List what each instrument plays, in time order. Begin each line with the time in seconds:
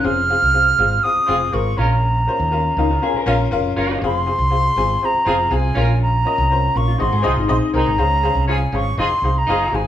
Already playing: clean electric guitar C#4
0.03 fretless electric bass F1, upright piano C4 F4 G#4 F5, flute F6
0.29 upright piano C4 F4 G#4 F5
0.42 fretless electric bass C2
0.54 upright piano C4 F4 G#4 F5
0.78 fretless electric bass G#1, upright piano C4 F4 G#4 F5
1.03 upright piano C4 F4 G#4 F5, flute D#6
1.16 muted fretless electric bass stroke
1.26 fretless electric bass F1, horn section C4 F4 G#4, upright piano C4 F4 G#4 F5
1.52 fretless electric bass G#1, upright piano C4 F4 G#4 A#4, flute C#6
1.77 fretless electric bass A#1, upright piano A#2 C#4 F4 A#4 F5, horn section C#4 F4 A#4, flute A#5
2.27 upright piano C#4 F4 A#4 C5
2.40 fretless electric bass D#2
2.52 upright piano C#4 F4 A#4 F5
2.77 fretless electric bass C#2, upright piano C#4 F4 A#4 F5, clean electric guitar D#4
2.91 clean electric guitar F4
3.02 upright piano C#4 F4 A#4 F5, clean electric guitar G#4
3.14 clean electric guitar A#4, muted fretless electric bass stroke
3.26 fretless electric bass A#1, upright piano C#4 F4 A#4 F5, horn section C#4 F4 A#4
3.51 fretless electric bass F1, upright piano C#4 F4 A#4 F5
3.76 fretless electric bass F#1, horn section C#4 F4 A#4, upright piano C#4 F4 A#4 F5
4.01 fretless electric bass F1, upright piano C4 F4 G#4 F5
4.06 flute C6
4.26 upright piano C4 F4 G#4 F5
4.39 fretless electric bass C2
4.50 upright piano C4 F4 G#4 F5
4.76 fretless electric bass G#1, upright piano C4 F4 G#4 G#5
5.02 upright piano C4 F4 G#4 C5, flute A#5
5.14 muted fretless electric bass stroke
5.25 fretless electric bass F1, horn section C4 F4 G#4, upright piano C4 F4 G#4 F5
5.51 fretless electric bass C2, upright piano C4 F4 G#4 F5, flute G#5
5.74 fretless electric bass A#1, upright piano A#2 C#4 F4 A#4 F5, horn section C#4 F4 A#4
6.02 flute A#5
6.25 upright piano C#4 F4 A#4 D#5
6.38 fretless electric bass C2
6.50 upright piano C#4 F4 A#4 C5
6.75 fretless electric bass A#1, upright piano C#4 F4 A#4 F5, flute C#6
6.88 clean electric guitar F4
6.98 fretless electric bass G#1, upright piano G#2 C4 D#4 G#4 D#5, clean electric guitar F#4, flute C6
7.12 fretless electric bass G#2, clean electric guitar G#4
7.22 fretless electric bass C2, upright piano C4 D#4 G#4 D#5, horn section C4 D#4 G#4
7.26 clean electric guitar F4
7.36 fretless electric bass G#1, clean electric guitar D#4
7.48 fretless electric bass A#1, upright piano C4 D#4 G#4 D#5, flute C6
7.73 fretless electric bass C2, upright piano C4 D#4 G#4 A#4, horn section C4 D#4 G#4, flute A#5
7.87 fretless electric bass G#1
7.98 fretless electric bass C#2, upright piano C#4 G#4 C5 F5
8.23 upright piano C#4 G#4 C5 F5
8.35 fretless electric bass C2
8.48 horn section C#4 F4 G#4, upright piano C#4 G#4 C5 F5, flute G#5
8.72 fretless electric bass G#1, horn section C#4 F4 G#4, upright piano C#4 G#4 C5 F5, flute C#6
8.97 fretless electric bass F1, upright piano D#4 G#4 C5 F5, horn section D#4 F4 G#4, flute C6
9.10 muted fretless electric bass stroke
9.22 fretless electric bass C2, upright piano D#4 G#4 C5 F5
9.38 flute A#5
9.47 fretless electric bass F#1, horn section D#4 F4 G#4, upright piano D#4 G#4 C5 F5
9.72 fretless electric bass G#1, upright piano D#4 G#4 C5 F5, flute G#5